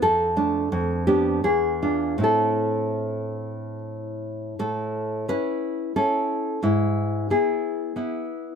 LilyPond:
\new Staff \with { instrumentName = "Nylon-string guitar" } { \time 3/4 \key a \minor \tempo 4 = 88 << { a'4. g'8 gis'4 | a'2 r4 | \key a \major a'4 b'4 a'4 | e'4 gis'4. r8 | } \\ { f,8 <a d'>8 f,8 <b d'>8 e,8 <d' f'>8 | <a, c' e'>2. | a,4 <cis' e'>4 <cis' e'>4 | gis,4 <b e'>4 <b e'>4 | } >> }